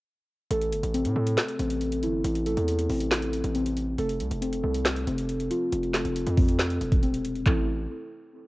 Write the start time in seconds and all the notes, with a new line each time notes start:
0.51 A1 A4, closed hi-hat
0.61 closed hi-hat
0.72 G1, closed hi-hat
0.83 A1, closed hi-hat
0.94 C4, closed hi-hat
1.05 A2, closed hi-hat
1.16 A2 A4
1.27 closed hi-hat
1.38 snare, clap, closed hi-hat
1.48 closed hi-hat
1.59 A1 C4, closed hi-hat
1.70 closed hi-hat
1.81 closed hi-hat
1.92 closed hi-hat
2.03 G1 E4, closed hi-hat
2.25 A1, closed hi-hat
2.35 closed hi-hat
2.46 A4, closed hi-hat
2.57 E2, closed hi-hat
2.68 closed hi-hat
2.79 closed hi-hat
2.89 A1 C4, open hi-hat
3.01 closed hi-hat
3.11 snare, clap, closed hi-hat
3.22 closed hi-hat
3.33 closed hi-hat
3.44 A1, closed hi-hat
3.55 C4, closed hi-hat
3.66 closed hi-hat
3.77 closed hi-hat
3.98 F1 A4, closed hi-hat
4.09 closed hi-hat
4.20 C2, closed hi-hat
4.31 F1, closed hi-hat
4.42 C4, closed hi-hat
4.53 closed hi-hat
4.63 C2 A4
4.74 closed hi-hat
4.85 snare, clap, closed hi-hat
4.96 closed hi-hat
5.07 F1 C4, closed hi-hat
5.18 closed hi-hat
5.29 closed hi-hat
5.40 closed hi-hat
5.51 F4, closed hi-hat
5.72 F1, closed hi-hat
5.83 closed hi-hat
5.94 A4, snare, clap, closed hi-hat
6.05 F1, closed hi-hat
6.16 closed hi-hat
6.27 F2, closed hi-hat
6.37 C4, kick, open hi-hat
6.48 closed hi-hat
6.59 snare, clap, closed hi-hat
6.70 closed hi-hat
6.81 E1, closed hi-hat
6.92 kick, closed hi-hat
7.03 C4, closed hi-hat
7.14 closed hi-hat
7.25 closed hi-hat
7.35 closed hi-hat
7.46 A1 C4 E4 A4, kick, clap